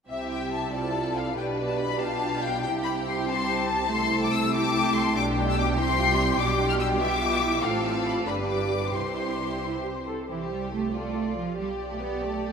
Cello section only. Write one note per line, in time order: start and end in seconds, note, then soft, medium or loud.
0.08 1.32 C3 medium
1.36 2.62 B2 medium
2.65 5.16 C3 medium
5.15 5.76 B2 medium
5.78 6.40 C3 medium
6.39 7.62 B2 medium
7.65 8.28 A2 medium
8.28 8.92 G2 medium
8.94 10.08 C3 medium
10.29 10.49 E3 medium
10.51 10.72 G3 medium
10.73 10.94 A3 medium
10.95 11.36 A3 medium
11.37 11.58 F3 medium
11.59 11.67 G3 medium
11.91 12.01 A3 medium
12.01 12.22 B3 medium
12.22 12.52 A3 medium